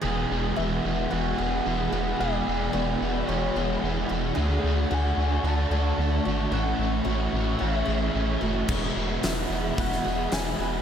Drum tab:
CC |----------------|----------------|----------------|----------------|
HH |----------------|----------------|----------------|----------------|
SD |----------------|----------------|----------------|----------------|
BD |----------------|----------------|----------------|----------------|

CC |x---------------|
HH |----o---o---o---|
SD |----o----o--o---|
BD |o-------o-------|